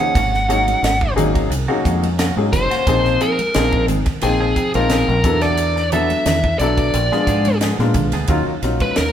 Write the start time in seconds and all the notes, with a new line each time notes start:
Already playing: F#5
0.00 F3 A#3 C#4 D#4 G#4, ride
0.15 G#1 D#3 A#3 C#4 F#4, kick, hi-hat pedal, ride
0.33 muted clean electric guitar stroke, snare
0.49 D#3 F#3 A#3 C#4 D#4 F#4 G#4, hi-hat pedal, ride
0.68 muted clean electric guitar stroke, ride, high conga
0.83 G#1, snare, hi-hat pedal, ride
1.01 muted clean electric guitar stroke, kick
1.16 G#1 F#3 A#3 C#4 D#4 G#4, muted clean electric guitar stroke, hi-hat pedal, ride, high conga, low conga
1.35 muted clean electric guitar stroke, kick, ride
1.50 C2, muted clean electric guitar stroke, hi-hat pedal, ride
1.68 D#3 F#3 A#3 C#4 D#4 F#4 G#4
1.84 F2 D#3 A#3 C#4 F#4, kick, hi-hat pedal, ride, high conga
2.03 ride, high conga
2.18 D#3 A#3 C#4 F#4, snare, hi-hat pedal, ride
2.36 G#2 F#3 A#3 C#4 D#4 G#4, muted clean electric guitar stroke, high conga
2.53 F#1 C5, muted clean electric guitar stroke, kick, snare, hi-hat pedal, ride, low conga
2.71 A#3 C#4 F#4, snare, ride
2.86 A#1 F3 A#3 C4 D#4 G#4, kick, hi-hat pedal, ride
3.05 muted clean electric guitar stroke, snare
3.21 F3 C4 D#4 G#4 A#4, hi-hat pedal, ride
3.39 muted clean electric guitar stroke, ride, high conga
3.54 A#1 F3 A#3 C4 D#4 G#4, snare, hi-hat pedal, ride
3.72 muted clean electric guitar stroke, kick
3.88 G#1, muted clean electric guitar stroke, hi-hat pedal, ride, high conga, low conga
4.06 muted clean electric guitar stroke, kick, snare, ride
4.21 A#1 F3 A#3 C4 D#4 G#4 G5, muted clean electric guitar stroke, hi-hat pedal, ride
4.40 F3 C4 D#4 G#4
4.56 F3 C4 D#4 G#4, kick, hi-hat pedal, ride
4.74 A#1 F3 A#3 C4 D#4 F4 A#4, ride, high conga
4.89 F3 C4 D#4 G#4, snare, hi-hat pedal, ride
5.08 A#1, muted clean electric guitar stroke, high conga
5.23 E2 F#3 B3 D4 E4 A4, muted clean electric guitar stroke, kick, hi-hat pedal, ride
5.41 B3 D4 A4 D5, snare, ride
5.57 hi-hat pedal, ride
5.76 muted clean electric guitar stroke, snare
5.92 F#3 B3 D4 E4 A4 E5, hi-hat pedal, ride, low conga
6.10 muted clean electric guitar stroke, ride, high conga
6.26 E2, snare, hi-hat pedal, ride, low conga
6.44 muted clean electric guitar stroke, kick
6.59 B1 F#3 B3 D4 E4 A4 D5, muted clean electric guitar stroke, hi-hat pedal, ride
6.78 muted clean electric guitar stroke, kick, ride
6.94 A#1, muted clean electric guitar stroke, hi-hat pedal, ride
7.12 F3 G#3 B3 D4 F4 G#4 A#4, snare
7.27 G#2 F3 B3 D4 G#4, kick, hi-hat pedal, ride, high conga
7.45 ride, high conga
7.61 F3 B3 D4 G#4, snare, hi-hat pedal, ride
7.78 A#2 G#3 B3 D4 F4 A#4, muted clean electric guitar stroke, snare, high conga
7.94 B1, muted clean electric guitar stroke, kick, hi-hat pedal, ride, low conga
8.12 D2 B3 D4 G#4, snare, ride
8.28 D#2 F#3 A#3 C#4 D#4 F4 A#4, kick, hi-hat pedal, ride, low conga
8.47 muted fingered electric bass stroke, muted clean electric guitar stroke
8.62 A#1 F#3 C#4 D#4 F4 A#4, snare, hi-hat pedal, ride
8.80 B4, muted clean electric guitar stroke, kick, ride, high conga
8.96 D#2 A#4, snare, hi-hat pedal, ride